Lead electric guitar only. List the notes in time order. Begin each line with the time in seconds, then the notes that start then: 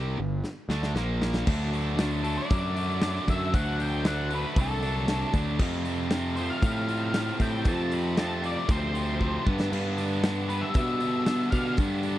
2.24 A4
2.37 D5
3.30 E5
3.55 F#5
3.82 G5
4.07 F#5
4.34 B4
4.61 A4
6.36 C5
6.50 F5
7.42 G5
7.68 A5
7.94 B5
8.19 A5
8.46 D5
8.71 C5
10.49 B4
10.61 E5
11.51 F5